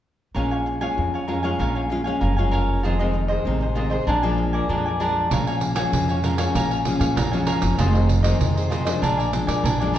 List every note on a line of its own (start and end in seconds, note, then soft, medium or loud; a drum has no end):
0.35 0.87 A#1 medium
0.35 0.94 A#2 soft
0.35 0.77 G#3 soft
0.35 0.77 C#4 soft
0.35 0.77 F4 soft
0.35 0.49 A#4 medium
0.35 0.49 C#5 medium
0.35 0.49 F5 medium
0.35 0.50 G#5 medium
0.51 0.65 C#5 soft
0.51 0.65 F5 soft
0.51 0.65 G#5 soft
0.66 muted cavaquinho stroke soft
0.81 1.23 G#3 soft
0.81 1.23 C#4 soft
0.81 1.23 F4 medium
0.81 1.12 C#5 soft
0.81 1.11 F5 soft
0.81 1.11 G#5 medium
0.98 1.50 F2 medium
0.98 1.56 F2 soft
1.14 1.27 C#5 soft
1.14 1.28 F5 soft
1.14 1.27 G#5 soft
1.28 1.37 G#3 soft
1.28 1.37 C#4 soft
1.28 1.37 F4 soft
1.28 1.42 A#4 soft
1.28 1.42 C#5 soft
1.28 1.43 F5 soft
1.28 1.42 G#5 medium
1.43 1.85 G#3 medium
1.43 1.85 C#4 medium
1.43 1.86 F4 medium
1.43 1.58 C#5 soft
1.43 1.58 F5 soft
1.43 1.57 G#5 medium
1.59 2.12 A#1 medium
1.59 2.19 A#2 soft
1.59 1.73 A#4 medium
1.59 1.74 C#5 medium
1.59 1.74 F5 medium
1.59 1.74 G#5 medium
1.75 1.89 C#5 soft
1.75 1.89 F5 soft
1.75 1.89 G#5 soft
1.89 2.00 G#3 medium
1.89 2.00 C#4 medium
1.89 2.00 F4 medium
1.89 muted cavaquinho stroke soft
2.04 2.32 G#3 medium
2.04 2.33 C#4 medium
2.04 2.33 F4 medium
2.04 2.20 C#5 soft
2.04 2.20 F5 medium
2.04 2.19 G#5 soft
2.21 2.83 F#1 medium
2.21 2.81 F2 soft
2.21 2.35 A#4 soft
2.21 2.35 C#5 soft
2.21 2.36 F5 soft
2.21 2.35 G#5 soft
2.37 2.79 G#3 soft
2.37 2.79 C#4 medium
2.37 2.79 F4 medium
2.37 2.51 C#5 soft
2.37 2.52 F5 soft
2.37 2.51 G#5 soft
2.51 2.81 A#4 medium
2.51 2.82 C#5 medium
2.51 2.82 F5 medium
2.51 2.82 G#5 medium
2.83 3.36 F1 medium
2.83 3.43 F2 soft
2.83 2.93 D#3 soft
2.83 2.93 G#3 soft
2.83 2.94 C4 medium
2.83 2.97 F4 medium
2.83 2.98 G#4 medium
2.83 2.98 C5 medium
2.83 2.98 D#5 medium
2.99 3.41 D#3 soft
2.99 3.41 G#3 medium
2.99 3.41 C4 medium
2.99 3.13 G#4 soft
2.99 3.13 C5 soft
2.99 3.13 D#5 soft
3.13 muted cavaquinho stroke soft
3.28 3.60 G#4 soft
3.28 3.59 C5 medium
3.28 3.59 D#5 medium
3.45 3.98 A1 medium
3.45 4.05 C3 soft
3.45 3.64 D#3 soft
3.45 3.64 G#3 medium
3.45 3.64 C4 soft
3.61 3.75 G#4 soft
3.61 3.75 C5 soft
3.61 3.75 D#5 soft
3.75 3.96 D#3 soft
3.75 3.96 G#3 soft
3.75 3.96 C4 soft
3.75 3.90 F4 soft
3.75 3.90 G#4 medium
3.75 3.90 C5 soft
3.75 3.89 D#5 medium
3.90 4.06 G#4 medium
3.90 4.06 C5 medium
3.90 4.05 D#5 medium
4.07 4.60 A#1 medium
4.07 4.67 A#2 soft
4.07 4.17 F3 soft
4.07 4.17 G#3 soft
4.07 4.21 D4 medium
4.07 4.17 D4 medium
4.07 4.22 A#4 medium
4.07 4.22 D5 medium
4.07 4.21 G#5 medium
4.22 4.64 F3 medium
4.22 4.65 G#3 medium
4.22 4.65 D4 medium
4.22 4.37 A#4 soft
4.22 4.37 D5 soft
4.22 4.37 G#5 soft
4.38 muted cavaquinho stroke soft
4.53 4.68 A#4 soft
4.53 4.68 D5 medium
4.53 4.68 G#5 soft
4.69 5.22 A#1 medium
4.69 5.28 F2 medium
4.69 4.87 F3 medium
4.69 4.88 G#3 medium
4.69 4.84 D4 soft
4.69 4.88 D4 medium
4.69 4.84 A#4 soft
4.69 4.84 D5 soft
4.69 4.85 G#5 soft
4.86 5.00 A#4 soft
4.86 5.00 D5 soft
4.86 4.99 G#5 soft
5.00 5.29 F3 soft
5.00 5.29 G#3 soft
5.00 5.30 D4 medium
5.00 5.29 D4 medium
5.00 5.30 A#4 medium
5.00 5.31 D5 medium
5.00 5.31 G#5 medium
5.31 5.84 A#1 medium
5.31 5.90 A#2 soft
5.31 5.72 F3 soft
5.31 5.73 G#3 soft
5.31 5.73 C#4 medium
5.31 5.46 A#4 medium
5.31 5.46 C#5 medium
5.31 5.46 F5 medium
5.31 5.46 G#5 medium
5.31 pandeiro medium
5.47 5.61 C#5 soft
5.47 5.61 F5 soft
5.47 5.61 G#5 soft
5.47 pandeiro soft
5.61 muted cavaquinho stroke soft
5.61 pandeiro soft
5.75 6.18 F3 medium
5.75 6.18 G#3 medium
5.75 6.19 C#4 medium
5.75 6.07 C#5 soft
5.75 6.07 F5 medium
5.75 6.06 G#5 medium
5.75 pandeiro medium
5.93 6.46 F2 medium
5.93 6.52 F2 medium
5.93 pandeiro medium
6.09 6.23 C#5 soft
6.09 6.24 F5 soft
6.09 6.23 G#5 soft
6.09 pandeiro soft
6.23 6.34 F3 medium
6.23 6.34 G#3 soft
6.23 6.35 C#4 medium
6.23 6.38 A#4 soft
6.23 6.38 C#5 soft
6.23 6.38 F5 soft
6.23 6.37 G#5 medium
6.23 pandeiro medium
6.38 6.81 F3 medium
6.38 6.81 G#3 medium
6.38 6.81 C#4 medium
6.38 6.54 C#5 soft
6.38 6.54 F5 medium
6.38 6.53 G#5 medium
6.38 pandeiro medium
6.55 6.94 A#1 medium
6.55 7.14 A#2 soft
6.55 6.69 A#4 medium
6.55 6.70 C#5 medium
6.55 6.70 F5 medium
6.55 6.69 G#5 medium
6.55 pandeiro medium
6.71 6.85 C#5 soft
6.71 6.85 F5 soft
6.71 6.85 G#5 soft
6.71 pandeiro soft
6.85 7.15 F3 medium
6.85 7.16 G#3 medium
6.85 7.16 C#4 medium
6.85 muted cavaquinho stroke soft
6.85 pandeiro medium
6.99 7.18 A#2 medium
6.99 7.15 C#5 soft
6.99 7.15 F5 medium
6.99 7.15 G#5 medium
6.99 pandeiro medium
7.16 7.56 A#1 medium
7.16 7.76 F2 medium
7.16 7.31 A#4 soft
7.16 7.31 C#5 soft
7.16 7.31 F5 medium
7.16 7.30 G#5 medium
7.16 pandeiro medium
7.32 7.74 F3 medium
7.32 7.75 G#3 medium
7.32 7.75 C#4 medium
7.32 7.46 C#5 soft
7.32 7.47 F5 soft
7.32 7.46 G#5 soft
7.32 pandeiro soft
7.47 7.77 A#4 medium
7.47 7.77 C#5 medium
7.47 7.78 F5 medium
7.47 7.78 G#5 medium
7.47 pandeiro medium
7.62 7.76 F#1 medium
7.62 pandeiro medium
7.78 8.31 F1 medium
7.78 8.38 F2 soft
7.78 8.21 D#3 soft
7.78 8.21 G#3 soft
7.78 8.21 C4 medium
7.78 7.93 F4 medium
7.78 7.93 G#4 medium
7.78 7.94 C5 medium
7.78 7.92 D#5 medium
7.78 pandeiro medium
7.93 8.08 G#4 soft
7.93 8.08 C5 soft
7.93 8.08 D#5 soft
7.93 pandeiro soft
8.08 muted cavaquinho stroke soft
8.08 pandeiro soft
8.23 8.67 D#3 medium
8.23 8.67 G#3 medium
8.23 8.67 C4 medium
8.23 8.55 G#4 medium
8.23 8.55 C5 medium
8.23 8.54 D#5 medium
8.23 pandeiro medium
8.41 8.94 F2 medium
8.41 9.00 C3 soft
8.41 pandeiro medium
8.56 8.69 G#4 soft
8.56 8.70 C5 soft
8.56 8.70 D#5 soft
8.56 pandeiro soft
8.70 8.82 D#3 soft
8.70 8.82 G#3 soft
8.70 8.82 C4 medium
8.70 8.85 F4 soft
8.70 8.85 G#4 soft
8.70 8.85 C5 soft
8.70 8.84 D#5 medium
8.70 pandeiro soft
8.85 9.28 F3 medium
8.85 9.28 G#3 soft
8.85 9.29 D4 medium
8.85 9.02 G#4 soft
8.85 9.01 C5 medium
8.85 9.01 D#5 medium
8.85 pandeiro medium
9.02 9.42 A#1 medium
9.02 9.62 A#2 medium
9.02 9.17 D4 medium
9.02 9.17 A#4 medium
9.02 9.17 D5 medium
9.02 9.17 G#5 medium
9.02 pandeiro medium
9.18 9.31 A#4 soft
9.18 9.32 D5 soft
9.18 9.32 G#5 soft
9.18 pandeiro soft
9.32 9.62 F3 medium
9.32 9.63 G#3 medium
9.32 9.63 D4 medium
9.32 muted cavaquinho stroke soft
9.32 pandeiro medium
9.47 9.65 A#2 medium
9.47 9.63 A#4 soft
9.47 9.63 D5 soft
9.47 9.62 G#5 medium
9.47 pandeiro medium
9.63 9.98 A#1 medium
9.63 9.98 F2 medium
9.63 9.78 D4 soft
9.63 9.79 A#4 medium
9.63 9.79 D5 medium
9.63 9.78 G#5 medium
9.63 pandeiro medium
9.80 9.98 F3 medium
9.80 9.98 G#3 medium
9.80 9.98 D4 medium
9.80 9.93 A#4 soft
9.80 9.94 D5 soft
9.80 9.94 G#5 soft
9.80 pandeiro soft
9.93 9.98 D4 medium
9.93 9.98 A#4 medium
9.93 9.98 D5 medium
9.93 9.98 G#5 medium